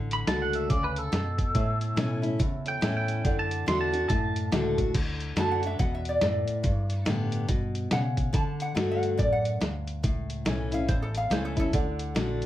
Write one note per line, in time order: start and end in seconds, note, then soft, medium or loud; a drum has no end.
0.00 0.27 A1 medium
0.00 0.67 D3 medium
0.00 1.50 A4 medium
0.00 1.51 D5 medium
0.00 1.51 F#5 medium
0.11 0.27 B5 medium
0.11 closed hi-hat medium
0.27 0.69 C#2 medium
0.27 0.68 A3 medium
0.27 0.69 D4 medium
0.27 0.69 F#4 medium
0.27 0.42 A5 medium
0.27 snare loud
0.27 closed hi-hat medium
0.42 0.55 F#5 medium
0.53 0.70 E5 medium
0.53 closed hi-hat medium
0.70 1.11 D2 medium
0.70 1.11 C#3 medium
0.70 0.84 D5 medium
0.70 kick loud
0.70 closed hi-hat medium
0.84 0.98 B4 medium
0.96 2.22 A4 loud
0.96 closed hi-hat medium
1.12 1.54 F#2 loud
1.12 1.53 B2 loud
1.12 snare loud
1.12 closed hi-hat medium
1.38 kick medium
1.38 closed hi-hat medium
1.55 1.96 A2 medium
1.55 2.37 A2 medium
1.55 2.63 A4 medium
1.55 2.64 C#5 medium
1.55 2.64 E5 medium
1.55 kick loud
1.55 closed hi-hat medium
1.81 closed hi-hat medium
1.96 2.38 B2 medium
1.96 2.22 E3 medium
1.96 2.22 A3 medium
1.96 2.22 C#4 medium
1.96 2.21 E4 loud
1.96 snare loud
1.96 closed hi-hat medium
2.22 2.39 C#4 medium
2.22 2.38 E4 medium
2.22 closed hi-hat medium
2.39 3.21 E2 loud
2.39 2.81 C#3 medium
2.39 kick loud
2.39 closed hi-hat medium
2.66 3.23 A4 soft
2.66 3.25 C#5 soft
2.66 3.25 G5 medium
2.66 2.96 G5 loud
2.66 closed hi-hat medium
2.81 3.23 A2 medium
2.81 3.22 E3 medium
2.81 3.23 A3 loud
2.81 3.23 C#4 medium
2.81 3.24 E4 loud
2.81 snare loud
2.81 closed hi-hat medium
2.97 3.38 G5 medium
3.08 closed hi-hat medium
3.24 3.66 F#2 medium
3.24 3.65 D3 medium
3.24 4.91 A4 medium
3.24 4.91 D5 medium
3.24 4.91 F#5 medium
3.24 kick loud
3.24 closed hi-hat medium
3.39 3.66 A5 medium
3.51 closed hi-hat medium
3.66 4.08 E2 medium
3.66 3.92 D3 medium
3.66 3.92 A3 medium
3.66 3.92 D4 medium
3.66 3.91 F#4 medium
3.66 3.80 C6 medium
3.66 snare loud
3.66 closed hi-hat medium
3.81 4.07 A5 loud
3.92 4.09 D4 soft
3.92 4.08 F#4 medium
3.92 closed hi-hat medium
4.09 4.51 F#2 medium
4.09 4.91 A2 medium
4.09 4.91 A5 medium
4.09 kick loud
4.09 closed hi-hat medium
4.36 closed hi-hat medium
4.52 4.93 C#2 loud
4.52 4.77 D3 loud
4.52 4.77 A3 medium
4.52 4.77 D4 medium
4.52 4.77 F#4 loud
4.52 snare loud
4.52 closed hi-hat medium
4.78 4.95 D4 soft
4.78 4.94 F#4 medium
4.78 kick medium
4.78 closed hi-hat medium
4.94 5.36 D2 medium
4.94 5.35 D3 medium
4.94 kick loud
4.94 closed hi-hat medium
4.94 crash loud
5.20 closed hi-hat medium
5.36 5.78 F#2 medium
5.36 5.61 D3 medium
5.36 5.62 A3 medium
5.36 5.62 D4 medium
5.36 5.61 F#4 medium
5.36 5.51 A5 loud
5.36 snare loud
5.36 closed hi-hat medium
5.51 5.65 F#5 medium
5.62 5.79 D4 soft
5.62 5.78 F#4 medium
5.62 closed hi-hat medium
5.66 5.79 E5 medium
5.79 6.20 E2 medium
5.79 6.20 B2 medium
5.79 5.93 F#5 medium
5.79 kick loud
5.79 closed hi-hat medium
5.94 6.08 E5 medium
6.05 6.21 D5 medium
6.05 closed hi-hat medium
6.21 6.46 F#2 medium
6.21 6.62 A2 medium
6.21 7.04 D5 medium
6.21 snare loud
6.21 closed hi-hat medium
6.48 muted fingered electric bass stroke soft
6.48 closed hi-hat medium
6.63 7.45 G2 medium
6.63 7.05 G2 medium
6.63 kick loud
6.63 closed hi-hat medium
6.90 closed hi-hat medium
7.05 7.48 A2 medium
7.05 7.47 D3 medium
7.05 7.47 G3 medium
7.05 7.47 B3 medium
7.05 7.48 G4 loud
7.05 snare loud
7.05 closed hi-hat medium
7.32 closed hi-hat medium
7.48 7.90 G2 medium
7.48 7.89 B2 medium
7.48 kick loud
7.48 closed hi-hat medium
7.75 closed hi-hat medium
7.91 8.33 B2 medium
7.91 8.32 C#3 medium
7.91 8.33 F#5 medium
7.91 snare loud
7.91 closed hi-hat medium
8.17 kick medium
8.17 closed hi-hat medium
8.33 8.73 D3 medium
8.33 8.75 D3 medium
8.33 8.62 A5 medium
8.33 kick loud
8.33 closed hi-hat loud
8.60 8.89 F#5 medium
8.60 closed hi-hat medium
8.75 9.17 G2 medium
8.75 9.16 D3 medium
8.75 9.17 A3 medium
8.75 9.17 D4 medium
8.75 9.17 F#4 medium
8.75 snare loud
8.75 closed hi-hat medium
8.91 9.18 F#5 medium
9.03 closed hi-hat medium
9.17 9.59 F#2 medium
9.17 9.60 A2 medium
9.17 9.32 D5 medium
9.17 kick loud
9.17 closed hi-hat medium
9.32 9.74 F#5 medium
9.45 closed hi-hat medium
9.60 10.02 D2 medium
9.60 10.02 G2 medium
9.60 snare loud
9.60 closed hi-hat medium
9.87 closed hi-hat medium
10.03 10.45 C#2 medium
10.03 10.85 A2 medium
10.03 kick loud
10.03 closed hi-hat medium
10.30 closed hi-hat medium
10.45 10.87 B1 medium
10.45 10.70 E3 medium
10.45 10.71 A3 medium
10.45 10.71 C#4 medium
10.45 10.70 E4 medium
10.45 snare loud
10.45 closed hi-hat medium
10.71 10.89 C#4 soft
10.71 10.87 E4 medium
10.71 10.88 F5 medium
10.71 closed hi-hat medium
10.88 11.30 A1 medium
10.88 11.70 E2 medium
10.88 11.02 C5 medium
10.88 kick loud
10.88 closed hi-hat medium
11.02 11.16 A4 medium
11.15 11.31 F5 medium
11.15 closed hi-hat medium
11.30 11.72 C#2 medium
11.30 11.55 E3 medium
11.30 11.56 A3 medium
11.30 11.56 C#4 medium
11.30 11.55 E4 loud
11.30 11.45 C5 medium
11.30 snare loud
11.30 closed hi-hat medium
11.45 11.58 A4 medium
11.56 11.73 C#4 soft
11.56 11.72 E4 soft
11.56 12.42 A4 medium
11.56 kick medium
11.56 closed hi-hat medium
11.73 12.14 D2 medium
11.73 12.13 D3 medium
11.73 12.46 A4 medium
11.73 12.46 D5 medium
11.73 12.46 F#5 medium
11.73 kick loud
11.73 closed hi-hat medium
11.99 closed hi-hat medium
12.15 12.46 A#1 medium
12.15 12.46 D3 medium
12.15 12.46 A3 medium
12.15 12.46 D4 medium
12.15 12.46 F#4 medium
12.15 snare medium
12.15 closed hi-hat medium
12.42 closed hi-hat medium